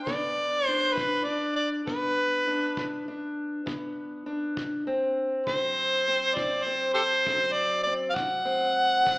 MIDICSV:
0, 0, Header, 1, 4, 480
1, 0, Start_track
1, 0, Tempo, 600000
1, 774, Time_signature, 12, 3, 24, 8
1, 7347, End_track
2, 0, Start_track
2, 0, Title_t, "Harmonica"
2, 0, Program_c, 0, 22
2, 33, Note_on_c, 0, 74, 90
2, 529, Note_off_c, 0, 74, 0
2, 529, Note_on_c, 0, 72, 90
2, 753, Note_on_c, 0, 71, 80
2, 765, Note_off_c, 0, 72, 0
2, 993, Note_on_c, 0, 74, 68
2, 1005, Note_off_c, 0, 71, 0
2, 1242, Note_off_c, 0, 74, 0
2, 1246, Note_on_c, 0, 74, 73
2, 1356, Note_off_c, 0, 74, 0
2, 1495, Note_on_c, 0, 71, 81
2, 2423, Note_off_c, 0, 71, 0
2, 4374, Note_on_c, 0, 72, 81
2, 5083, Note_on_c, 0, 74, 80
2, 5095, Note_off_c, 0, 72, 0
2, 5315, Note_on_c, 0, 72, 74
2, 5327, Note_off_c, 0, 74, 0
2, 5547, Note_off_c, 0, 72, 0
2, 5552, Note_on_c, 0, 67, 57
2, 5552, Note_on_c, 0, 69, 57
2, 5552, Note_on_c, 0, 72, 81
2, 5611, Note_off_c, 0, 67, 0
2, 5622, Note_off_c, 0, 69, 0
2, 6023, Note_on_c, 0, 74, 93
2, 6035, Note_off_c, 0, 72, 0
2, 6264, Note_off_c, 0, 74, 0
2, 6268, Note_on_c, 0, 74, 81
2, 6356, Note_off_c, 0, 74, 0
2, 6482, Note_on_c, 0, 77, 68
2, 6521, Note_on_c, 0, 78, 104
2, 6533, Note_off_c, 0, 77, 0
2, 7347, Note_off_c, 0, 78, 0
2, 7347, End_track
3, 0, Start_track
3, 0, Title_t, "Steel-string acoustic guitar"
3, 0, Program_c, 1, 25
3, 0, Note_on_c, 1, 62, 49
3, 52, Note_on_c, 1, 50, 62
3, 60, Note_on_c, 1, 59, 53
3, 485, Note_off_c, 1, 50, 0
3, 540, Note_off_c, 1, 62, 0
3, 543, Note_on_c, 1, 62, 51
3, 748, Note_off_c, 1, 59, 0
3, 763, Note_on_c, 1, 43, 72
3, 997, Note_off_c, 1, 62, 0
3, 1000, Note_on_c, 1, 62, 53
3, 1201, Note_off_c, 1, 43, 0
3, 1488, Note_on_c, 1, 50, 57
3, 1496, Note_on_c, 1, 59, 53
3, 1924, Note_off_c, 1, 50, 0
3, 1975, Note_off_c, 1, 62, 0
3, 1979, Note_on_c, 1, 62, 51
3, 2225, Note_on_c, 1, 43, 69
3, 2460, Note_off_c, 1, 62, 0
3, 2463, Note_on_c, 1, 62, 50
3, 2652, Note_off_c, 1, 43, 0
3, 2922, Note_off_c, 1, 59, 0
3, 2927, Note_on_c, 1, 50, 62
3, 2932, Note_on_c, 1, 59, 60
3, 3363, Note_off_c, 1, 50, 0
3, 3406, Note_off_c, 1, 62, 0
3, 3410, Note_on_c, 1, 62, 57
3, 3625, Note_off_c, 1, 59, 0
3, 3652, Note_on_c, 1, 38, 74
3, 3892, Note_off_c, 1, 62, 0
3, 3896, Note_on_c, 1, 60, 54
3, 4086, Note_off_c, 1, 38, 0
3, 4377, Note_on_c, 1, 50, 64
3, 4377, Note_on_c, 1, 54, 56
3, 4808, Note_off_c, 1, 50, 0
3, 4860, Note_off_c, 1, 60, 0
3, 4863, Note_on_c, 1, 60, 59
3, 5086, Note_on_c, 1, 38, 70
3, 5322, Note_off_c, 1, 60, 0
3, 5332, Note_on_c, 1, 60, 54
3, 5521, Note_off_c, 1, 38, 0
3, 5813, Note_off_c, 1, 54, 0
3, 5818, Note_on_c, 1, 50, 61
3, 5824, Note_on_c, 1, 54, 61
3, 6246, Note_off_c, 1, 50, 0
3, 6281, Note_off_c, 1, 60, 0
3, 6290, Note_on_c, 1, 60, 54
3, 6502, Note_off_c, 1, 60, 0
3, 6511, Note_on_c, 1, 38, 77
3, 6761, Note_on_c, 1, 60, 54
3, 6952, Note_off_c, 1, 38, 0
3, 7235, Note_off_c, 1, 54, 0
3, 7240, Note_on_c, 1, 50, 53
3, 7244, Note_on_c, 1, 54, 54
3, 7347, Note_off_c, 1, 50, 0
3, 7347, Note_off_c, 1, 54, 0
3, 7347, Note_off_c, 1, 60, 0
3, 7347, End_track
4, 0, Start_track
4, 0, Title_t, "Drums"
4, 57, Note_on_c, 9, 36, 61
4, 137, Note_off_c, 9, 36, 0
4, 780, Note_on_c, 9, 36, 69
4, 860, Note_off_c, 9, 36, 0
4, 1500, Note_on_c, 9, 36, 59
4, 1580, Note_off_c, 9, 36, 0
4, 2217, Note_on_c, 9, 36, 67
4, 2297, Note_off_c, 9, 36, 0
4, 2936, Note_on_c, 9, 36, 64
4, 3016, Note_off_c, 9, 36, 0
4, 3657, Note_on_c, 9, 36, 67
4, 3737, Note_off_c, 9, 36, 0
4, 4375, Note_on_c, 9, 36, 59
4, 4455, Note_off_c, 9, 36, 0
4, 5095, Note_on_c, 9, 36, 63
4, 5175, Note_off_c, 9, 36, 0
4, 5813, Note_on_c, 9, 36, 59
4, 5893, Note_off_c, 9, 36, 0
4, 6531, Note_on_c, 9, 36, 67
4, 6611, Note_off_c, 9, 36, 0
4, 7252, Note_on_c, 9, 36, 57
4, 7332, Note_off_c, 9, 36, 0
4, 7347, End_track
0, 0, End_of_file